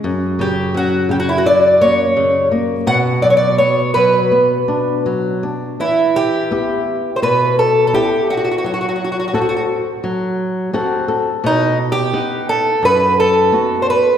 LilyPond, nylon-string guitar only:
\new Staff \with { instrumentName = "Nylon-string guitar" } { \time 4/4 \key b \minor \tempo 4 = 85 << { r1 | r1 | \key e \minor r1 | r2. fis''8 a'8 |
r1 | } \\ { fis,8 cis8 fis8 cis8 fis8 ais8 cis8 ais8 | b,8 fis8 b8 fis8 b8 d'8 fis8 d'8 | e4 <b e' g'>4 b,4 <b e' g'>4 | fis4 <c' fis' a'>4 fis4 <c' fis' a'>4 |
b,4 <b dis' fis''>4 fis,4 <b dis' fis'>4 | } >> }